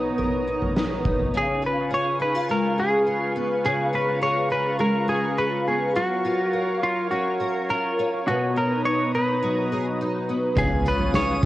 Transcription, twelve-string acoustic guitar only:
0.00 1.34 B2 medium
0.00 0.23 F#3 medium
0.00 0.76 B3 soft
0.00 0.46 D#4 medium
0.18 1.40 A#4 medium
0.48 1.04 D#4 medium
0.76 1.65 B3 soft
1.05 1.40 D#4 soft
1.34 3.63 C#3 medium
1.62 2.19 F4 medium
1.91 2.77 G#4 medium
2.20 2.35 D#4 medium
2.35 3.05 F4 medium
2.49 4.78 G#3 medium
2.78 4.20 G#4 medium
3.06 3.92 F4 medium
3.36 5.66 B3 medium
3.65 5.96 C#3 medium
3.93 4.50 F4 medium
4.22 5.07 G#4 medium
4.50 5.37 F4 medium
4.79 5.95 G#3 medium
5.08 6.01 G#4 medium
5.37 6.24 F4 medium
5.67 6.02 B3 medium
5.95 9.42 F#3 medium
6.25 6.82 F4 medium
6.53 7.40 A#4 medium
7.11 7.98 C#4 medium
7.40 9.72 A#4 medium
7.69 8.33 F4 medium
7.99 8.33 C#4 medium
8.28 10.58 B2 medium
8.56 9.13 D#4 medium
9.14 10.00 D#4 medium
9.42 10.63 F#3 medium
9.72 9.85 G#4 medium
10.01 10.64 D#4 medium
10.29 10.89 B3 medium
10.57 11.46 C#3 medium
10.86 11.43 F4 medium
11.15 11.46 G#4 medium

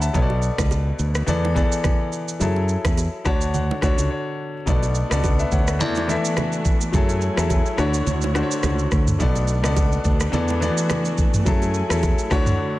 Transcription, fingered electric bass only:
0.14 0.49 B1 loud
0.58 0.90 C#2 medium
0.99 1.21 D2 medium
1.28 1.62 E2 loud
2.41 2.75 F#2 loud
2.85 3.07 E2 medium
3.26 3.70 D2 loud
3.82 3.95 D2 medium
3.98 4.08 C#2 medium
4.67 5.02 B1 loud
5.11 5.43 C#2 medium
5.52 5.80 D2 medium
5.80 6.15 E2 loud
6.94 7.28 F#2 loud
7.37 7.60 E2 medium
7.78 8.01 D2 loud
8.07 8.41 D2 loud
8.63 8.86 C#2 medium
8.92 9.14 D2 medium
9.20 9.64 B1 loud
9.64 9.96 C#2 medium
10.05 10.27 D2 medium
10.33 10.68 E2 loud
11.46 11.81 F#2 loud
11.90 12.12 E2 medium
12.31 12.53 D2 loud

